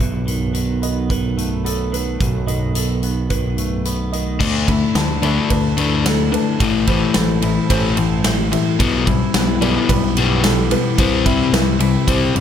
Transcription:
Already playing: B3 B4
0.00 B1 B2 F#3 D#4 A4, closed hi-hat
0.27 D#3, closed hi-hat
0.54 D#3, closed hi-hat
0.82 B3 D#5, closed hi-hat
1.10 D#3 B4, kick, closed hi-hat
1.38 A3, closed hi-hat
1.64 B3 A4, closed hi-hat
1.92 D#3 B4, closed hi-hat
2.20 B1 B2, kick, closed hi-hat
2.47 D#3 D#5, closed hi-hat
2.75 D#3 A4, closed hi-hat
3.03 B3, closed hi-hat
3.30 D#3 B4, kick, closed hi-hat
3.58 A3, closed hi-hat
3.85 B3, closed hi-hat
4.13 D#3 D#5, closed hi-hat
4.40 D2 D3 A3 D4 E4 A4 D5 A5, kick, crash
4.68 D3 A3 E4, kick, ride
4.95 D2 D3 A3 D4, snare, ride
5.22 D3 A3 D4 E4 D5, ride
5.50 D2 D3 A3 D4 B4, kick, ride
5.77 D3 A3 D4, ride
6.05 D3 A3 A4, snare, ride
6.32 D3 A3 D4 B4, ride
6.59 A1 A2 E3 A3 C5 A5, kick, ride
6.87 A2 E3 A3 E4 C5, kick, ride
7.14 A1 A2 E3 C4 A4, snare, ride
7.42 A2 E3 E4, ride
7.70 A1 A2 E3 A3 C4 C5, kick, ride
7.97 A2 E3 A3, ride
8.24 A2 E3, snare, ride
8.52 A2 E3 C4 E5, ride
8.79 B1 B2 G3 B3 G4 B4 G5, kick, ride
9.07 B2 G3 E4, kick, ride
9.34 B1 B2 G3 B3, snare, ride
9.61 B2 G3 B3 E4 D5, ride
9.89 B1 B2 G3 B3 B4, kick, ride
10.17 B2 G3 B3, ride
10.43 B2 E3 G3 A4, snare, ride
10.71 B2 G3 B3 B4, ride
10.98 C2 C3 G3 C4, kick, ride
11.26 C3 G3 C4 E4 E5, kick, ride
11.53 C2 C3 G3 C4 B4, snare, ride
11.79 C3 G3 E4, ride
12.07 C2 C3 G3 C4 C5, kick, ride
12.35 F#2 C3 G3, ride

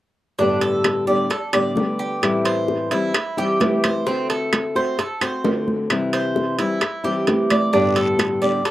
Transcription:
0.39 G2 A2 D3 G3 B3 D4 G4, high bongo, high conga
0.61 A4, high bongo, high conga, high timbale
0.84 high bongo, high conga, high timbale, claves
1.07 A2 D3 G3 B3 G4 D5, high bongo, high conga
1.30 A4, muted nylon-string guitar stroke, high bongo, high conga, high timbale
1.53 A2 D3 G3 B3 G4 D5, high bongo, high conga, high timbale, claves
1.76 D3 G3 B3 G4, high bongo, low bongo, high conga
1.99 G4
2.22 A2 E3 G3 C4 E4, high bongo, high conga, high timbale, claves
2.45 C5, high bongo, high conga, high timbale
2.68 high bongo, high conga
2.91 E3 G3 C4 E4, high bongo, high conga, high timbale
3.14 muted nylon-string guitar stroke, high bongo, high conga, high timbale, claves
3.37 E3 G3 C4 E4 G4, high bongo, high conga
3.60 E3 G3 C4 E4, high bongo, low bongo, high conga, high timbale, low timbale
3.84 C5, high conga, high timbale, claves
4.06 D3 A3 C4 F#4, high bongo, high conga
4.30 A4, high bongo, high conga, high timbale
4.53 high bongo, high conga, high timbale, claves
4.75 A3 C4 F#4 C5, high bongo, high conga
4.98 A4, muted nylon-string guitar stroke, high bongo, high conga, high timbale
5.21 A3 C4 F#4 C5, high bongo, high conga, high timbale, claves
5.44 D3 A3 C4 F#4, high bongo, low bongo, high conga, low timbale
5.68 high conga
5.90 C3 E3 G3 C4 E4, high bongo, high conga, high timbale, claves
6.13 C5, high bongo, high conga, high timbale
6.36 high bongo, high conga
6.59 E3 G3 C4 E4, high bongo, high conga, high timbale
6.81 muted nylon-string guitar stroke, high bongo, high conga, high timbale, claves
7.04 E3 G3 C4 E4 G4, high bongo, high conga
7.27 E3 G3 C4 E4, high bongo, low bongo, high conga, high timbale
7.50 D5, high conga, high timbale, claves
7.73 G2 A2 D3 G3 B3 D4 G4, high bongo, high conga, long guiro
7.96 A4, high bongo, high conga, high timbale
8.19 high bongo, high conga, high timbale, short guiro, claves
8.42 A2 D3 G3 B3 G4 D5, high bongo, high conga, short guiro
8.65 A4, muted nylon-string guitar stroke, high bongo, high conga, high timbale, long guiro

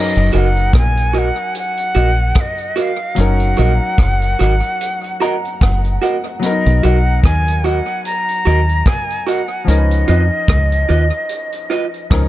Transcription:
Already playing: F#3 C#4 D#4 G#4 A#4 B4 D#5
0.15 F#1, closed hi-hat
0.32 F#1 F#4 A#4 D#5, closed hi-hat
0.36 F#5
0.57 closed hi-hat
0.73 A#1, kick, cross-stick, closed hi-hat
0.78 G#5
0.97 closed hi-hat
1.13 F#4 A#4 D#5, closed hi-hat
1.18 F#5
1.55 F#5, closed hi-hat
1.77 closed hi-hat
1.94 A#1 F#4 A#4 D#5, closed hi-hat
2.35 kick, cross-stick, closed hi-hat
2.40 D#5
2.58 closed hi-hat
2.76 F#4 A#4 D#5 F5, closed hi-hat
3.15 F#1 F#3 C#4, closed hi-hat
3.19 D#4 A#4 F#5
3.40 closed hi-hat
3.57 A#1 F#4 A#4 D#5, closed hi-hat
3.98 F#1, kick, cross-stick, closed hi-hat
4.22 closed hi-hat
4.39 G#1 F#4 A#4 D#5, cross-stick, closed hi-hat
4.62 closed hi-hat
4.81 closed hi-hat
5.04 closed hi-hat
5.20 F#4 A#4 D#5 A#5, closed hi-hat
5.45 closed hi-hat
5.61 F#1 F#5, kick, cross-stick, closed hi-hat
5.85 closed hi-hat
6.02 F#4 A#4 D#5 F#5, closed hi-hat
6.26 muted clean electric guitar stroke
6.39 F#3 B3, closed hi-hat
6.44 C#4 A#4 D#5
6.50 D#4
6.66 B1, closed hi-hat
6.83 B1 F#4 A#4 D#5 F#5, closed hi-hat
7.24 D#2 G#5, kick, cross-stick, closed hi-hat
7.48 closed hi-hat
7.64 F#4 A#4 D#5 F#5, closed hi-hat
8.05 A#5, closed hi-hat
8.28 closed hi-hat
8.45 D#2 F#4 A#4 D#5, closed hi-hat
8.69 closed hi-hat
8.86 G#5, kick, cross-stick, closed hi-hat
9.10 closed hi-hat
9.27 F#4 A#4 D#5 F#5, closed hi-hat
9.64 C#2 F3 C#4 D#5, closed hi-hat
9.69 D#4 A#4
9.78 B4
9.91 closed hi-hat
10.08 F2 F4 B4 D#5, closed hi-hat
10.48 C#2, kick, cross-stick, closed hi-hat
10.72 closed hi-hat
10.89 D#2 F4 B4 D#5, closed hi-hat
11.29 closed hi-hat
11.52 closed hi-hat
11.70 F4 B4 D#5, closed hi-hat
11.94 closed hi-hat
12.10 C#2 F3 C#4 D#4 A#4, kick, cross-stick, closed hi-hat

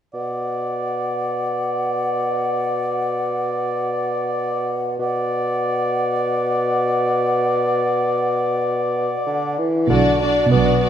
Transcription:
0.14 B2 D5 F#5
4.99 B2 D5 F#5
9.26 D3
9.58 E3
9.90 B1 B2 D3 D4 F#4 D5
10.20 D4 F#4 D5
10.51 B1 B2 B3 D4 F#4 D5
10.81 D4 F#4 D5

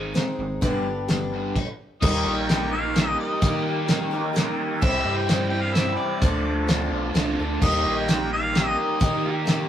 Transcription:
Already playing: G#1 G#2 D#3 G#3 C4 D#4 G#4
0.14 G#2 D#3 G#3 C4 D#4 G#4, snare, closed hi-hat
0.38 G#1 G#2 D#3
0.62 G1 G2 D3 G3 B3 D4 G4, kick, closed hi-hat
0.86 G2 D3
1.08 G2 D3 G3 B3 D4 G4, snare, closed hi-hat
1.32 G2 D3 G3
1.56 kick, crash
2.01 D#2 D#3 G3 A#3 D#4 G4 A#4 D#5 G5, kick, crash
2.24 A#1 A#3 D#4 G4
2.36 G5
2.48 D#3 G3 A#3 D#4 G4, snare, closed hi-hat
2.71 A#3 D#4 G4 F5
2.94 D#3 G3 A#3 D#4 G4, snare, closed hi-hat
3.20 D#5
3.42 D#3 G3 A#3 D#4 G4, kick, closed hi-hat
3.66 A#3 D#4 G4
3.88 D#3 G3 A#3 D#4 G4, snare, closed hi-hat
4.12 A#3 D#4 G4
4.33 D#3 G3 A#3, snare, closed hi-hat
4.37 D#4 G4
4.81 C2 C3 E3 G3 C4 E4 G4 C5 E5, kick, crash
5.05 G2 G3 C4 E4
5.16 G5
5.28 E3 G3 C4 E4 G4, snare, closed hi-hat
5.50 E4 G5
5.54 G3 C4
5.62 F5
5.73 C3 E3 G3 C4 G4 E5, snare, closed hi-hat
5.78 E4
5.96 D5
6.21 D2 D3 F3 A3 D4 F4 A4 D5 A5, kick, closed hi-hat
6.45 A3 D4 F4
6.67 D3 F3 A3 D4 A4, snare, closed hi-hat
6.71 F4
6.91 B1 A3 D4 F4
7.14 C2 D3 F3 A3 D4 F4 A4, snare, closed hi-hat
7.38 D2 F4 A4
7.42 D4
7.61 D#2 D#3 G3 A#3 D#4 G4 D#5 A#5, kick, crash
7.85 A#1 A#3 D#4 G4
7.98 G5
8.08 D#3 G3 A#3 D#4 G4, snare, closed hi-hat
8.31 A#3 D#4 G4 F5
8.54 D#3 G3 A#3 D#4 G4, snare, closed hi-hat
8.68 D#5
8.78 D#5
9.01 D#3 G3 A#3 D#4 G4, kick, closed hi-hat
9.25 A#3 D#4 G4
9.45 D#3 G3 A#3 D#4, snare, closed hi-hat
9.50 G4

